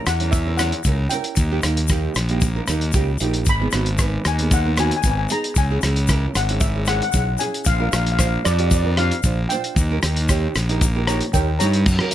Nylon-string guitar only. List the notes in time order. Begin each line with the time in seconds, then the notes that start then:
0.20 C#4 E4 A#4
0.46 C#4 E4 A#4
0.60 C#4 E4 A#4
0.86 C#4 E4 A#4
1.12 C#4 E4 A#4
1.52 A#3 D#4 G4
1.64 A#3 D#4 A#4
1.91 A#3 D#4 G4
2.30 A#3 D#4 G4
2.56 A#3 D#4 A#4
2.69 A#3 D#4 A#4
2.94 A#3 D#4 G4
3.21 A#3 D#4 G4
3.61 B3 D#4 G#4
3.74 B3 D#4 F#4
4.00 B3 D#4 B4
4.39 B3 D#4 G#4
4.66 B3 D#4 A#4
4.78 B3 D#4 F#4
5.05 B3 D#4 B4
5.30 B3 D#4 G#4
5.70 C#4 E4 G#4
5.84 C#4 E4 G#4
6.09 C#4 E4 A#4
6.50 C#4 E4 G#4
6.76 C#4 E4 G#4
6.87 C#4 E4 G#4
7.13 C#4 E4 G#4
7.40 C#4 E4 G#4
7.79 D4 F4 A#4
7.92 D4 F4 A#4
8.19 D4 F4 C5
8.58 D4 F4 G4
8.84 D4 F4 A#4
8.98 D4 F4 G4
9.25 D4 F4 C5
9.52 D4 F4 C5
9.91 D#4 G4 A#4
10.04 D#4 G4 A#4
10.30 D#4 G4 C#5
10.69 D#4 G4 A#4
10.96 D#4 G4 A#4
11.08 D#4 G4 A#4
11.35 D#4 G4 C#5
11.61 D#4 G4 A#4
12.00 C#4 F#4 A#4